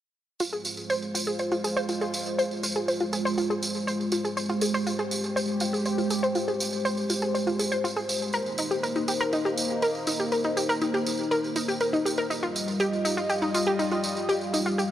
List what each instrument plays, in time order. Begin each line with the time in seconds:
0.40 analog synth pad G#3 F4 C5, synth arpeggio sound F4, tambourine
0.53 synth arpeggio sound G#4, tambourine
0.65 tambourine
0.77 tambourine
0.90 synth arpeggio sound C5, tambourine
1.02 tambourine
1.15 synth arpeggio sound F4, tambourine
1.27 synth arpeggio sound G#4, tambourine
1.39 synth arpeggio sound C5, tambourine
1.52 synth arpeggio sound F4, tambourine
1.64 synth arpeggio sound G#4, tambourine
1.77 synth arpeggio sound C5, tambourine
1.89 synth arpeggio sound F4, tambourine
2.01 synth arpeggio sound G#4, tambourine
2.14 tambourine
2.26 tambourine
2.39 synth arpeggio sound C5, tambourine
2.51 tambourine
2.63 synth arpeggio sound F4, tambourine
2.76 synth arpeggio sound G#4, tambourine
2.88 synth arpeggio sound C5, tambourine
3.00 synth arpeggio sound F4, tambourine
3.13 synth arpeggio sound G#4, tambourine
3.25 synth arpeggio sound C5, tambourine
3.38 synth arpeggio sound F4, tambourine
3.50 synth arpeggio sound G#4, tambourine
3.63 tambourine
3.74 tambourine
3.87 synth arpeggio sound C5, tambourine
4.01 tambourine
4.12 synth arpeggio sound F4, tambourine
4.25 synth arpeggio sound G#4, tambourine
4.37 analog synth pad G4, synth arpeggio sound C5, tambourine
4.49 synth arpeggio sound F4, tambourine
4.61 synth arpeggio sound G#4, tambourine
4.74 synth arpeggio sound C5, tambourine
4.87 synth arpeggio sound F4, tambourine
4.99 synth arpeggio sound G#4, tambourine
5.11 tambourine
5.24 tambourine
5.36 synth arpeggio sound C5, tambourine
5.48 tambourine
5.60 synth arpeggio sound F4, tambourine
5.73 synth arpeggio sound G#4, tambourine
5.85 synth arpeggio sound C5, tambourine
5.98 synth arpeggio sound F4, tambourine
6.10 synth arpeggio sound G#4, tambourine
6.23 synth arpeggio sound C5, tambourine
6.35 synth arpeggio sound F4, tambourine
6.48 synth arpeggio sound G#4, tambourine
6.60 tambourine
6.73 tambourine
6.85 synth arpeggio sound C5, tambourine
6.97 tambourine
7.10 synth arpeggio sound F4, tambourine
7.22 synth arpeggio sound G#4, tambourine
7.35 synth arpeggio sound C5, tambourine
7.47 synth arpeggio sound F4, tambourine
7.59 synth arpeggio sound G#4, tambourine
7.72 synth arpeggio sound C5, tambourine
7.84 synth arpeggio sound F4, tambourine
7.96 synth arpeggio sound G#4, tambourine
8.09 tambourine
8.22 tambourine
8.33 analog synth pad A#3 D#4, synth arpeggio sound A#4, tambourine
8.46 tambourine
8.58 synth arpeggio sound D#4, tambourine
8.71 synth arpeggio sound G4, tambourine
8.83 synth arpeggio sound A#4, tambourine
8.96 synth arpeggio sound D#4, tambourine
9.08 synth arpeggio sound G4, tambourine
9.21 synth arpeggio sound A#4, tambourine
9.33 synth arpeggio sound D#4, tambourine
9.45 synth arpeggio sound G4, tambourine
9.58 tambourine
9.70 tambourine
9.82 synth arpeggio sound A#4, tambourine
9.95 tambourine
10.07 synth arpeggio sound D#4, tambourine
10.20 synth arpeggio sound G4, tambourine
10.32 synth arpeggio sound A#4, tambourine
10.44 synth arpeggio sound D#4, tambourine
10.57 synth arpeggio sound G4, tambourine
10.69 synth arpeggio sound A#4, tambourine
10.82 synth arpeggio sound D#4, tambourine
10.94 synth arpeggio sound G4, tambourine
11.06 tambourine
11.18 tambourine
11.31 synth arpeggio sound A#4, tambourine
11.44 tambourine
11.56 synth arpeggio sound D#4, tambourine
11.68 synth arpeggio sound G4, tambourine
11.81 synth arpeggio sound A#4, tambourine
11.93 synth arpeggio sound D#4, tambourine
12.05 synth arpeggio sound G4, tambourine
12.17 synth arpeggio sound A#4, tambourine
12.30 analog synth pad G3 F4 D#5, synth arpeggio sound D#4, tambourine
12.43 synth arpeggio sound F4, tambourine
12.56 tambourine
12.68 tambourine
12.80 synth arpeggio sound G4, tambourine
12.93 tambourine
13.05 synth arpeggio sound D#4, tambourine
13.17 synth arpeggio sound F4, tambourine
13.30 synth arpeggio sound G4, tambourine
13.42 synth arpeggio sound D#4, tambourine
13.54 synth arpeggio sound F4, tambourine
13.66 synth arpeggio sound G4, tambourine
13.79 synth arpeggio sound D#4, tambourine
13.91 synth arpeggio sound F4, tambourine
14.04 tambourine
14.17 tambourine
14.29 synth arpeggio sound G4, analog synth pad F5, tambourine
14.41 tambourine
14.54 synth arpeggio sound D#4, tambourine
14.66 synth arpeggio sound F4, tambourine
14.78 synth arpeggio sound G4, tambourine